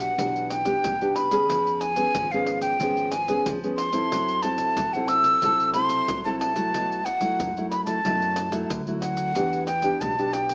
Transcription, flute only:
0.00 0.51 F#5 medium
0.50 1.17 G5 loud
1.15 1.82 B5 medium
1.80 2.33 G#5 loud
2.31 2.61 F5 medium
2.62 3.13 G5 medium
3.11 3.50 G#5 loud
3.77 4.44 C6 medium
4.42 4.95 A5 loud
4.93 5.09 F#5 medium
5.08 5.73 E6 loud
5.74 6.20 C6 loud
6.25 6.38 A5 medium
6.39 7.07 A5 loud
7.05 7.70 F#5 medium
7.70 7.84 B5 medium
7.85 8.71 A5 loud
9.01 9.64 F#5 medium
9.67 10.02 G5 medium
10.01 10.34 A5 medium
10.33 10.54 G5 loud

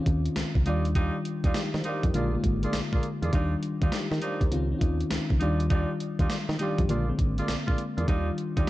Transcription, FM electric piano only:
0.00 0.61 D#3 medium
0.00 0.61 C4 medium
0.00 0.61 C#4 medium
0.00 0.61 F4 medium
0.66 1.62 D#3 medium
0.66 1.63 G3 medium
0.66 1.55 D4 medium
0.66 1.55 F4 loud
1.55 1.74 D#4 medium
1.55 1.73 G4 medium
1.75 1.84 C5 medium
1.85 2.04 G4 medium
1.85 2.03 A#4 medium
2.05 2.33 D#4 soft
2.05 2.32 G4 medium
2.14 2.29 D3 medium
2.14 2.30 G#3 medium
2.14 2.30 A#3 medium
2.14 2.30 F4 loud
2.33 2.98 D3 medium
2.33 2.98 G#3 medium
2.33 2.98 A#3 medium
2.33 2.99 F4 medium
3.33 3.91 D#3 medium
3.33 3.91 G3 medium
3.33 3.63 D4 medium
3.33 3.63 F4 medium
3.82 3.92 D4 soft
3.82 3.92 F4 medium
3.93 4.11 D#4 medium
3.93 4.11 G4 medium
4.13 4.22 G4 medium
4.13 4.22 A#4 medium
4.23 4.41 C5 medium
4.42 4.70 G4 soft
4.42 4.70 A#4 medium
4.52 4.67 D#3 medium
4.52 4.67 C4 medium
4.52 4.67 C#4 medium
4.52 4.68 F4 loud
4.71 5.35 D#3 medium
4.71 5.36 C4 medium
4.71 5.36 C#4 medium
4.71 4.76 D#4 medium
4.78 5.39 F4 medium
5.41 6.37 D#3 medium
5.41 6.38 G3 medium
5.41 6.38 D4 medium
5.41 6.38 F4 loud
6.59 6.89 D#3 medium
6.59 6.89 G3 medium
6.59 6.89 D4 medium
6.59 6.89 G4 loud
6.89 7.04 D3 medium
6.89 7.05 G#3 medium
6.89 7.05 A#3 medium
6.89 7.05 F4 loud
7.08 7.73 D3 medium
7.08 7.73 G#3 medium
7.08 7.73 A#3 medium
7.08 7.74 C4 medium
8.08 8.66 D#3 medium
8.08 8.66 G3 medium
8.08 8.66 D4 medium
8.08 8.17 D#4 medium
8.16 8.70 F4 medium

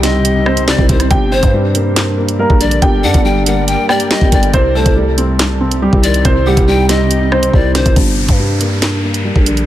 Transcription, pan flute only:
0.04 0.64 D#5 medium
0.68 0.88 D5 medium
0.90 1.10 C5 medium
1.32 1.52 C5 medium
2.61 2.81 D5 medium
3.04 3.24 F#5 loud
3.25 3.45 G5 medium
3.47 3.67 F#5 medium
3.67 3.88 G5 medium
3.89 4.10 D5 medium
4.11 4.31 D#5 medium
4.32 4.53 D5 medium
4.76 4.96 C5 medium
6.04 6.24 D5 medium
6.46 6.67 F#5 medium
6.67 6.88 G5 medium
6.89 7.50 D#5 medium
7.54 7.74 D5 medium
7.75 7.96 C5 medium

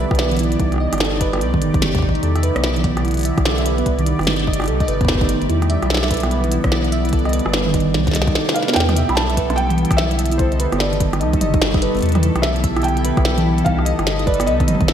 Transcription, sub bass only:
0.11 0.56 B1 loud
0.60 0.87 C2 loud
0.93 1.43 G1 medium
1.41 1.63 C2 loud
1.62 1.71 G1 medium
1.74 2.04 G1 medium
2.02 2.19 A1 medium
2.23 2.51 E2 loud
2.56 3.32 B1 loud
3.38 3.83 B1 loud
3.86 4.14 C2 loud
4.19 4.69 G1 loud
4.68 4.84 C2 loud
4.88 5.36 G1 loud
5.42 5.47 G1 medium
5.49 5.77 E2 loud
5.82 6.59 B1 loud
6.64 7.14 B1 loud
7.13 7.41 C2 loud
7.46 7.96 G1 medium
7.94 8.11 C2 loud
8.15 8.35 C2 loud
8.76 9.04 E2 loud
9.09 9.85 B1 medium
9.91 10.41 B1 loud
10.39 10.67 C2 loud
10.72 11.22 G1 loud
11.21 11.37 C2 loud
11.41 11.90 G1 loud
11.95 12.01 G1 medium
12.02 12.30 E2 loud
12.36 13.12 B1 medium
13.17 13.63 B1 loud
13.66 13.94 C2 loud
13.99 14.49 G1 loud
14.47 14.69 C2 loud
14.68 14.77 G1 medium
14.81 14.93 G1 medium

